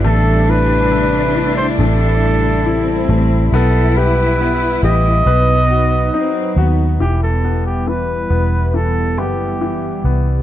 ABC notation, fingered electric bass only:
X:1
M:4/4
L:1/8
Q:1/4=69
K:Em
V:1 name="Fingered electric bass" clef=bass
A,,,4 A,,,3 A,,, | B,,,3 A,,, B,,,2 z ^D,, | E,,,3 E,,,2 F,,,2 C,, |]